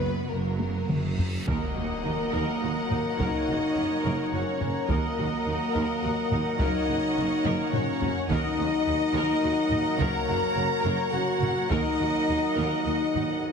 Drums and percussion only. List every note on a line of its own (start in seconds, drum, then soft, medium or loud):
0.59 taiko high medium
0.89 taiko mid medium
1.18 taiko low medium
1.47 taiko medium
2.90 taiko low-mid soft
3.19 taiko medium
4.61 taiko low-mid soft
4.89 taiko medium
6.30 taiko low-mid soft
6.59 taiko medium
7.45 taiko mid medium
7.73 taiko low-mid medium
8.02 taiko low medium
8.30 taiko medium
9.71 taiko low-mid soft
10.00 taiko medium
11.42 taiko low-mid medium
11.71 taiko loud
13.15 taiko low-mid soft